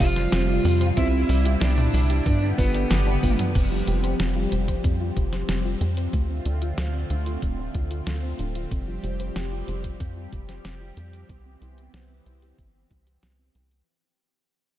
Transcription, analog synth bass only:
0.00 0.28 F1 loud
0.32 0.60 F1 medium
0.65 0.92 F2 medium
0.97 1.24 C2 loud
1.29 1.57 C2 medium
1.61 1.89 C2 loud
1.94 2.21 C2 medium
2.26 2.53 G2 medium
2.58 2.86 G1 medium
2.91 3.18 G1 loud
3.23 3.37 G1 medium
3.55 3.83 F1 loud
3.87 4.15 F1 medium
4.20 4.47 F1 loud
4.52 4.79 F1 medium
4.84 5.12 F2 medium
5.17 5.44 F1 loud
5.49 5.76 F1 medium
5.81 6.08 F2 medium
6.13 6.41 D2 loud
6.46 6.73 D2 medium
6.78 7.05 D2 loud
7.10 7.37 D2 medium
7.42 7.70 D1 medium
7.75 8.02 D2 loud
8.07 8.34 D2 medium
8.39 8.66 D1 medium
8.71 8.99 F1 loud
9.04 9.31 F1 medium
9.36 9.63 F1 loud
9.68 9.95 F1 medium
10.00 10.28 F2 medium
10.33 10.60 F1 loud
10.65 10.92 F1 medium
10.97 11.24 F2 medium
11.29 11.57 C2 loud
11.62 11.89 C2 medium
11.94 12.21 C2 loud
12.26 12.53 C2 medium
12.58 12.86 G1 medium
12.91 13.18 C2 loud
13.23 13.50 C2 medium
13.55 13.82 C2 medium

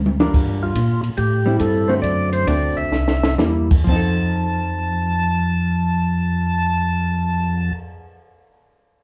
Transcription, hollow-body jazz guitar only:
0.20 0.73 G3 medium
0.20 0.73 D4 medium
0.20 0.73 F4 medium
0.20 0.73 A#4 medium
1.46 1.86 G3 medium
1.46 1.86 C4 medium
1.46 1.87 E4 medium
1.89 2.45 D3 medium
1.89 2.45 A3 medium
1.89 2.45 C4 medium
1.89 2.45 F#4 medium
2.47 2.93 D3 medium
2.47 2.93 A3 medium
2.47 2.93 C4 soft
2.47 2.93 F#4 medium
3.38 3.67 G3 medium
3.38 3.68 A#3 medium
3.38 3.68 E4 medium
3.84 7.73 F3 medium
3.89 7.78 C4 medium
3.89 7.81 D#4 medium
3.96 7.84 A4 medium

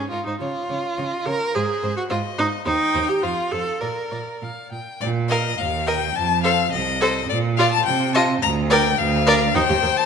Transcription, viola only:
0.10 0.25 F4 medium
0.26 0.39 D#4 medium
0.40 1.27 F4 medium
1.26 1.56 A#4 loud
1.55 1.96 G#4 medium
1.97 2.02 F#4 medium
2.10 2.18 F4 loud
2.39 2.47 D#4 loud
2.65 3.10 D#4 loud
3.09 3.24 G4 loud
3.23 3.53 F4 loud
3.52 3.82 A4 loud
3.81 4.41 A#4 medium
5.30 5.44 A#4 loud
5.87 6.01 A#4 medium
6.44 6.57 A4 medium
7.01 7.14 A4 loud
7.59 7.72 F4 loud
8.15 8.28 F4 loud
8.71 8.84 A#4 loud
9.27 9.40 A#4 loud
9.55 9.61 D#4 loud
9.69 9.75 G4 medium
9.82 9.87 A#4 loud

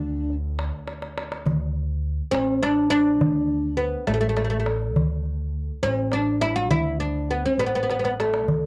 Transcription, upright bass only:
0.00 0.69 D2 medium
1.46 2.19 D2 medium
2.33 3.20 A1 medium
3.20 3.94 D2 loud
4.08 4.95 A1 medium
4.95 5.69 D2 medium
5.83 6.71 A1 medium
6.71 7.44 D2 medium
7.58 8.45 A1 medium
8.45 8.66 D2 medium

